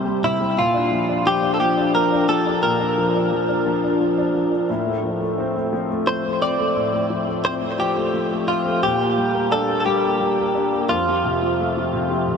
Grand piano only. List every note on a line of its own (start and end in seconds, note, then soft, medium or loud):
0.00 0.23 C3 medium
0.00 0.05 G3 medium
0.05 0.38 G3 medium
0.23 0.56 C3 medium
0.40 0.56 G3 soft
0.57 2.59 A#2 medium
0.74 1.08 D4 soft
0.91 1.24 F3 medium
1.09 1.41 D4 medium
1.26 1.59 F3 medium
1.43 1.76 D4 medium
1.61 1.93 F3 medium
1.77 2.10 D4 medium
1.95 2.27 F3 soft
2.12 2.45 D4 medium
2.29 2.96 F3 medium
2.46 2.78 D4 soft
2.63 4.66 A#2 medium
2.80 3.13 D4 soft
2.98 3.30 F3 soft
3.15 3.47 D4 soft
3.32 3.65 F3 medium
3.49 3.82 D4 soft
3.66 3.99 F3 medium
3.84 4.17 D4 soft
4.01 4.33 F3 soft
4.18 4.51 D4 soft
4.35 4.68 F3 soft
4.52 4.69 D4 soft
4.70 6.72 A2 medium
4.86 5.19 A3 soft
5.04 5.71 F3 soft
5.21 5.54 A3 soft
5.38 6.40 C4 medium
5.56 5.89 A3 soft
5.73 6.05 F3 medium
5.90 6.23 A3 medium
6.07 7.08 F3 soft
6.25 6.57 A3 soft
6.41 7.43 C4 medium
6.59 6.91 A3 soft
6.76 8.79 A2 medium
6.93 7.26 A3 soft
7.10 7.77 F3 soft
7.27 7.59 A3 medium
7.44 8.47 C4 medium
7.61 7.95 A3 soft
7.79 8.12 F3 medium
7.96 8.30 A3 medium
8.14 8.80 F3 soft
8.31 8.64 A3 medium
8.49 8.82 C4 medium
8.66 8.82 A3 soft
8.83 10.85 A#2 medium
9.00 9.33 A#3 soft
9.18 9.84 G3 medium
9.34 9.68 A#3 soft
9.51 10.53 D4 medium
9.69 10.03 A#3 medium
9.86 10.18 G3 medium
10.04 10.37 A#3 medium
10.20 10.87 G3 soft
10.39 10.71 A#3 soft
10.55 10.88 D4 medium
10.73 10.89 A#3 medium
10.90 12.37 F2 medium
11.07 11.41 F3 soft
11.24 11.92 C3 medium
11.42 11.75 F3 medium
11.59 12.37 A3 medium
11.77 12.09 F3 soft
11.93 12.26 C3 medium
12.11 12.37 F3 medium
12.28 12.37 C3 soft